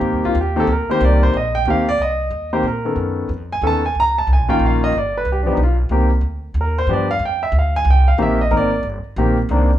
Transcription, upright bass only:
X:1
M:3/4
L:1/8
Q:"Swing" 1/4=184
K:Cm
V:1 name="Upright bass" clef=bass
(3G,, E,, C,, E,,2 D,, z | C,,2 B,,,2 D,,2 | C,,2 E,,2 B,,2 | ^F,,2 =F,,2 ^D,,2 |
_D,,2 (3C,, B,,, A,,, B,,,2 | G,,,2 C,,2 =B,,,2 | C,,2 D,,2 E,,2 | G,,2 F,,2 D,,2 |
C,,2 B,,,2 A,,,2 | G,,, z B,,,2 C,,2 |]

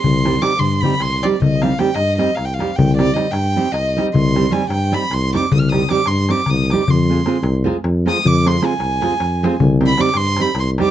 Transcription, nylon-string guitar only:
X:1
M:7/8
L:1/8
Q:1/4=154
K:Cm
V:1 name="Nylon-string guitar"
z [G,CEG] [G,CEG] z [G,CEG] z [G,CEG] | z [G,CEG] [G,CEG] z [G,CEG] z [G,CEG] | z [G,CEG] [G,CEG] z [G,CEG] z [G,CEG] | z [G,CEG] [G,CEG] z [G,CEG] z [G,CEG] |
z [G,CEG] [G,CEG] z [G,CEG] z [G,CEG] | z [A,CFA] [A,CFA] z [A,CFA] z [A,CFA] | z [A,CFA] [A,CFA] z [A,CFA] z [A,CFA] | z [G,CEG] [G,CEG] z [G,CEG] z [G,CEG] |]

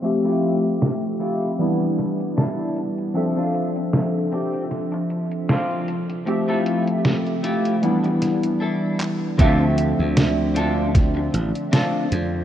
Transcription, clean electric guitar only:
X:1
M:4/4
L:1/16
Q:"Swing 16ths" 1/4=77
K:Ddor
V:1 name="Clean electric guitar"
z [A,EFG]2 z3 [A,EFG]2 z4 [DEA]2 z2 | z [CDF]2 z3 [CDG]2 z4 [CDF]2 z2 | z [A,EFA]2 z3 [A,EFG]2 z4 [DEA]2 z2 | [CDFA] z4 z [CDFA]2 z4 [CDFA]2 z2 |]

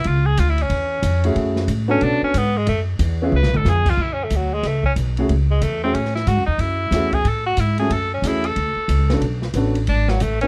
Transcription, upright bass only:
X:1
M:4/4
L:1/8
Q:"Swing" 1/4=183
K:F#m
V:1 name="Upright bass" clef=bass
C,,2 D,,2 E,,2 ^E,,2 | F,,2 A,,2 B,, z G,,2 | F,,2 E,,2 (3C,, B,,, G,,, ^E,,2 | F,,2 D,,2 C,,2 B,,,2 |
C,,2 E,,2 A,,2 (3G,, F,, E,, | F,,2 E,,2 A,,2 G,,2 | F,,2 E,,2 D,, z C,,2 | B,,,2 A,,,2 G,,,2 A,,,2 |]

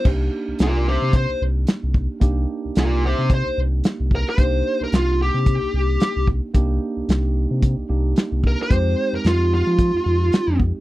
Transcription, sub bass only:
X:1
M:4/4
L:1/16
Q:"Swing 16ths" 1/4=111
K:Cm
V:1 name="Sub bass" clef=bass
C,,2 z C,, C,,3 C,2 C,, C,,2 z C,,2 z | C,,2 z C,, C,,3 C,2 C,, C,,2 z C,,2 z | C,,2 z C,, C,,3 C,2 C,, C,,2 z C,,2 z | C,,2 z C,, C,,3 C,2 C,, C,,2 z C,,2 z |
F,,2 z F,, F,,3 F,2 F,, F,,2 z F,,2 z |]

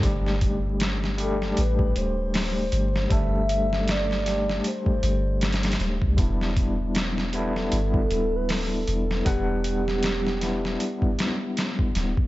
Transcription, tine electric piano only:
X:1
M:4/4
L:1/8
Q:"Swing 16ths" 1/4=78
K:G
V:1 name="Tine electric piano"
[G,A,DG]3 [G,A,DG]4- [G,A,DG] | [G,A,DA]3 [G,A,DG]4- [G,A,DG] | [G,B,DE]3 [G,B,DE]4- [G,B,DE] | [G,B,Df]3 [G,B,DE]4- [G,B,DE] |]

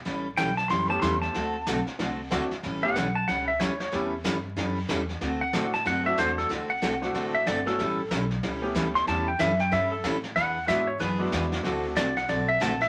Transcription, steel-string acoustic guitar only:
X:1
M:4/4
L:1/8
Q:"Swing" 1/4=186
K:D
V:1 name="Steel-string acoustic guitar"
[E,G,CEA] z [E,G,CEA] z [E,G,CEA] z [E,G,CEA] z | [D,A,=CFA] z [D,A,CFA] z [D,A,CFA] z [D,A,CFA] z | [E,G,CEA] z [E,G,CEA] z [E,G,CEA] z [E,G,CEA] z | [E,G,CEA] z [E,G,CEA] z [E,G,CEA] z [E,G,CEA] z |
[D,A,=CFA] z [D,A,CFA] z [D,A,CFA] z [D,A,CFA] z | [D,A,=CFA] z [D,A,CFA] z [D,A,CFA] z [D,A,CFA] z | [E,G,CEA] z [E,G,CEA] z [E,G,CEA] z [E,G,CEA] z | [E,G,CEA] z [E,G,CEA] z [E,G,CEA] z [E,G,CEA] z |
[E,B,D^G] z [E,B,DG] z [E,B,DG] z [E,B,DG] z | [D,A,=CFA] z [D,A,CFA] z [D,A,CFA] z [D,A,CFA] z |]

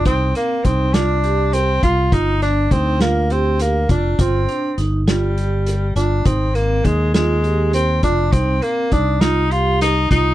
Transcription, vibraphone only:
X:1
M:7/8
L:1/8
Q:1/4=102
K:Gphr
V:1 name="Vibraphone"
E C E F G2 F | F D E F G2 F | F D E F G2 F | E C E F G2 F |
E C E F G2 F |]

